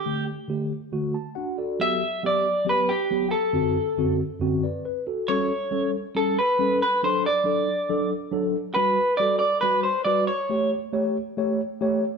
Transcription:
<<
  \new Staff \with { instrumentName = "Clean electric guitar" } { \time 4/4 \key g \major \tempo 4 = 138 g'8 r2. r8 | e''4 d''4 b'8 g'4 a'8~ | a'4. r2 r8 | cis''4. r8 a'8 b'4 b'8 |
c''8 d''2 r4. | b'4 d''8 d''8 b'8 c''8 d''8 cis''8~ | cis''8 r2. r8 | }
  \new Staff \with { instrumentName = "Tine electric piano" } { \time 4/4 \key g \major << { r2 r8 a''8 <d' fis' fis''>8 <fis' a' d''>8~ | <fis' a' d''>8 r2. r8 | r2 r8 <b' d''>8 b'8 <fis' a'>8~ | <fis' a'>8 r2. r8 |
r1 | r1 | r1 | } \\ { <d a g'>8 r8 <d a g'>8 r8 <d a fis'>8 r4. | <fis b g'>8 r8 <fis b g'>8 r8 <fis b g'>8 r8 <fis b g'>8 r8 | <fis, d c' fis'>8 r8 <fis, d c' fis'>8 r8 <fis, d c' fis'>8 r4. | <g cis' a'>8 r8 <g cis' a'>8 r8 <g cis' a'>8 r8 <g cis' a'>8 r8 |
<fis d' a'>8 r8 <fis d' a'>8 r8 <fis d' a'>8 r8 <fis d' a'>8 r8 | <g fis' b'>8 r8 <g fis' a'>8 r8 <g fis' b'>8 r8 <g fis' b'>8 r8 | <a g' cis''>8 r8 <a g' cis''>8 r8 <a g' cis''>8 r8 <a g' cis''>8 r8 | } >> }
>>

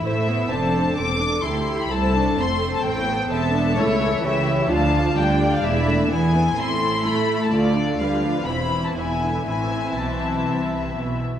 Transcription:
<<
  \new Staff \with { instrumentName = "Violin section" } { \time 4/4 \key a \minor \tempo 4 = 128 e''4 a''4 d'''4 c'''8. b''16 | a''4 c'''8. a''16 g''4 a''4 | cis''4 e''4 a''4 g''8. f''16 | e''4 gis''4 c'''4 b''8. a''16 |
d''4 f''4 b''8. a''16 gis''4 | gis''4 a''2 r4 | }
  \new Staff \with { instrumentName = "Violin section" } { \time 4/4 \key a \minor << { c''4 c''4 a'4 a'4 | c''4 c''4 c''4 e''4 | e''4 cis''4 f''4 d''4~ | d''4 gis'4 a'2 |
a'4 b'4 c''4 e''4 | e''2.~ e''8 r8 | } \\ { c''4 a'4 a'4 g'4 | a'4 a'2. | a'4 g'4 f'2 | e'4 e'4 e'8 e'4. |
f'4 f'4 e'2 | e'2.~ e'8 r8 | } >> }
  \new Staff \with { instrumentName = "Viola section" } { \time 4/4 \key a \minor << { e'4 d'4 c'8 d'8 e'4 | e'8 d'8 c'2 c'8 d'8 | e'4 e'4 d'4 d'4~ | d'4 b4 c'4 e'4 |
f'8 d'8 d'4 c'4 b4 | c'2.~ c'8 r8 | } \\ { a8 b8 c'2. | a2 c'8 b4. | a8 e4. f8 f8 g4 | gis8 a8 b8 b8 a2~ |
a4 g8 f8 e4 e8 d8 | e2.~ e8 r8 | } >> }
  \new Staff \with { instrumentName = "Cello section" } { \clef bass \time 4/4 \key a \minor a,4 f,4 e,4 d,4 | c,4 f,4 a,4 e,4 | cis,4 cis4 d,4 d4 | e,4 e4 a,4 a4 |
d,4 d4 e,4 e,4 | a,4 b,4 c4 b,4 | }
  \new Staff \with { instrumentName = "Double bass section" } { \clef bass \time 4/4 \key a \minor a,,4 f,,4 e,,4 d,4 | c,4 f,,4 a,,4 e,,4 | cis,4 cis,4 d,4 d,4 | e,,4 e,4 a,,4 a,4 |
d,4 d,4 e,,4 e,,4 | a,,4 b,,4 c,4 b,,4 | }
>>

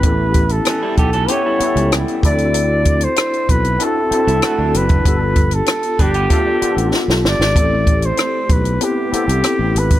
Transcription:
<<
  \new Staff \with { instrumentName = "Flugelhorn" } { \time 4/4 \key a \minor \tempo 4 = 96 b'8. a'8. a'8 cis''4 r8 d''8~ | d''8. c''8. b'8 a'4. b'8~ | b'8. a'8. g'4. r8 d''8~ | d''8. c''8. b'8 g'4. b'8 | }
  \new Staff \with { instrumentName = "Tine electric piano" } { \time 4/4 \key a \minor <b cis' e' g' a'>4. r8 <b cis' e' g' a'>8 <b cis' e' g' a'>4 <c' d' e' fis' a'>8~ | <c' d' e' fis' a'>4 r4 <c' d' e' fis' a'>8 <c' d' e' fis' a'>4 r8 | <b d' f' g' a'>4. r8 <b d' f' g' a'>8 <b d' f' g' a'>4 r8 | <a c' e' g' a'>4. r8 <b c' e' g' b'>8 <b c' e' g' a'>4 r8 | }
  \new Staff \with { instrumentName = "Clean electric guitar" } { \time 4/4 \key a \minor r4 <e cis'>16 <g e'>16 <b g'>16 <cis' a'>16 <b g'>16 <g e'>4~ <g e'>16 r8 | r2 r8. e'16 <a fis'>16 <fis d'>8. | r4. <d' b'>16 <b g'>16 <a f'>16 <f d'>4. r16 | r1 | }
  \new Staff \with { instrumentName = "Fingered electric bass" } { \clef bass \time 4/4 \key a \minor a,,4 r8 b,,8 r8. cis,8 r16 d,8~ | d,4 r8 b,,8 r8. c,16 r16 d,16 fis,,8 | g,,4 r8 g,,8 r8. a,,16 r16 b,,16 g,,16 gis,,16 | a,,4 r8 b,,8 r8. c,16 r16 a,,16 gis,,8 | }
  \new DrumStaff \with { instrumentName = "Drums" } \drummode { \time 4/4 <hh bd>8 <hh bd>16 hh16 <hh ss>8 <hh bd>16 hh16 hh8 hh16 hh16 <hh ss>16 hh16 <hh bd>16 hh16 | hh8 <hh bd>16 hh16 <hh ss>16 hh16 <hh bd>16 hh16 hh8 hh16 hh16 <hh ss>8 hh16 <hh bd>16 | <hh bd>8 <hh bd>16 hh16 <hh ss>16 hh16 <hh bd>16 hh16 <hh bd>8 hh16 hh16 sn16 sn16 sn16 sn16 | <hh bd>8 <hh bd>16 hh16 <hh ss>8 <hh bd>16 hh16 hh8 hh16 hh16 <hh ss>8 hh16 <hh bd>16 | }
>>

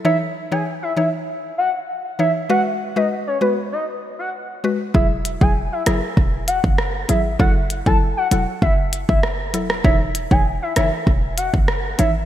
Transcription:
<<
  \new Staff \with { instrumentName = "Soft synth lead" } { \time 4/4 \key cis \minor \tempo 4 = 98 e''16 r8 gis''16 r16 e''16 e''16 r8. fis''16 r8. e''16 r16 | fis''16 r8 dis''16 r16 cis''16 b'16 r16 dis''16 r8 fis''16 r4 | e''16 r8 gis''16 r16 e''16 e''16 r8. fis''16 r8. e''16 r16 | fis''16 r8 a''16 r16 fis''16 fis''16 r16 e''16 r8 e''16 r4 |
e''16 r8 gis''16 r16 e''16 e''16 r8. fis''16 r8. e''16 r16 | }
  \new Staff \with { instrumentName = "Synth pluck" } { \time 4/4 \key cis \minor <e dis' cis''>16 r8 <e dis' cis''>16 r8 <e dis' cis''>16 r4. r16 <e dis' cis''>16 r16 | <gis fis' b'>16 r8 <gis fis' b'>16 r8 <gis fis' b'>16 r4. r16 <gis fis' b'>16 r16 | <fis e' gis'>16 r8 <fis e' gis'>16 r8 <fis e' gis'>16 r4. r16 <fis e' gis'>16 r16 | <fis e' a'>16 r8 <fis e' a'>16 r8 <fis e' a'>16 r4. r16 <fis e' a'>16 r16 |
<e dis' cis''>16 r8 <e dis' cis''>16 r8 <e dis' cis''>16 r4. r16 <e dis' cis''>16 r16 | }
  \new Staff \with { instrumentName = "808-style bass" } { \clef bass \time 4/4 \key cis \minor r1 | r1 | e,,8. e,,8 r16 fis,,16 r16 e,,8. fis,,8. gis,,8 | fis,,8. fis,,8 r16 e,,16 r16 fis,,8. fis,,8. e,,8 |
e,,8. e,,8 r16 fis,,16 r16 e,,8. fis,,8. gis,,8 | }
  \new DrumStaff \with { instrumentName = "Drums" } \drummode { \time 4/4 r4 r4 r4 r4 | r4 r4 r4 r4 | bd8 hh16 bd16 r8 <hh ss>8 bd8 hh16 bd16 ss8 hh8 | bd8 hh16 bd16 r8 hh8 bd8 hh16 bd16 ss8 hh16 ss16 |
bd8 hh16 bd16 r8 <hh ss>8 bd8 hh16 bd16 ss8 hh8 | }
>>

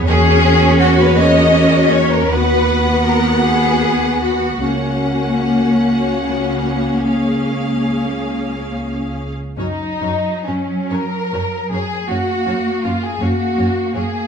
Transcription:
<<
  \new Staff \with { instrumentName = "Violin section" } { \time 12/8 \key fis \major \tempo 4. = 50 cis''2. fis''2. | fis''2. eis''2~ eis''8. r16 | cis''8 cis''8 cis''8 cis''8 cis''8 cis''8 cis''8 cis''8 cis''8 cis''8 cis''8 cis''8 | }
  \new Staff \with { instrumentName = "Violin section" } { \time 12/8 \key fis \major gis'4 fis'16 b'16 dis''4 cis''16 ais'16 b'4 ais'8 gis'4 fis'8 | cis'1~ cis'4. r8 | dis'4 cis'8 ais'4 gis'8 fis'4 eis'16 gis'16 fis'4 gis'8 | }
  \new Staff \with { instrumentName = "Viola section" } { \time 12/8 \key fis \major << { fis'2. fis'2. | fis'2. gis'2~ gis'8. r16 | fis'8 fis'8 fis'8 fis'8 fis'8 fis'8 fis'8 fis'8 fis'8 fis'8 fis'8 fis'8 | } \\ { ais2. b2. | ais2 b4 cis'2~ cis'8. r16 | cis'8 cis'8 cis'8 cis'8 cis'8 cis'8 cis'8 cis'8 cis'8 cis'8 cis'8 cis'8 | } >> }
  \new Staff \with { instrumentName = "Cello section" } { \time 12/8 \key fis \major cis'4. cis'4. b2. | ais1~ ais4~ ais16 r8. | fis2. ais4. ais4. | }
  \new Staff \with { instrumentName = "Double bass section" } { \clef bass \time 12/8 \key fis \major e,2. dis,2. | cis,1~ cis,4.~ cis,16 r16 | fis,8 fis,8 fis,8 fis,8 fis,8 fis,8 fis,8 fis,8 fis,8 fis,8 fis,8 fis,8 | }
>>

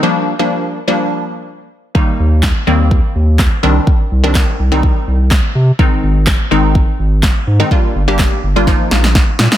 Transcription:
<<
  \new Staff \with { instrumentName = "Synth stab" } { \time 4/4 \key g \phrygian \tempo 4 = 125 <f g bes d'>8. <f g bes d'>8. r16 <f g bes d'>4.~ <f g bes d'>16 r8 | <ees g bes ees'>4~ <ees g bes ees'>16 r16 <ees g bes c'>4.~ <ees g bes c'>16 r16 <ees g c' d'>8~ | <ees g c' d'>8 r16 <ees g c' d'>8. r16 <ees g c' ees'>4.~ <ees g c' ees'>16 r8 | <ees aes c' ees'>4~ <ees aes c' ees'>16 r16 <ees aes c' ees'>4.~ <ees aes c' ees'>16 r8 <ees aes c' ees'>16 |
<g bes d' f'>8. <g bes d' g'>8. r16 <g bes d' f'>16 <f bes ees' f'>4.~ <f bes ees' f'>16 r16 | }
  \new Staff \with { instrumentName = "Sub bass" } { \clef bass \time 4/4 \key g \phrygian r1 | r8 ees,4 ees,4 ees,4 c,8 | r8 c,4 c,4 c,4 c8 | r8 aes,,4 aes,,4 aes,,4 aes,8 |
r8 g,,4 g,,4 bes,,4 bes,16 r16 | }
  \new DrumStaff \with { instrumentName = "Drums" } \drummode { \time 4/4 r4 r4 r4 r4 | bd4 <hc bd sn>4 bd4 <hc bd sn>4 | bd4 <hc bd sn>4 bd4 <hc bd sn>4 | bd4 <hc bd sn>4 bd4 <hc bd sn>4 |
bd4 <hc bd sn>4 <bd sn>8 sn16 sn16 <bd sn>8 sn16 sn16 | }
>>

